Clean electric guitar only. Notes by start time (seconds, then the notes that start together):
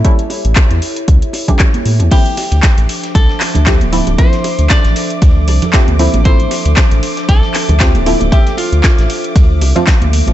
2.12 G4
3.15 A4
4.19 C5
4.70 D5
6.25 C5
7.29 A4
8.04 G4
8.32 G4
8.58 F4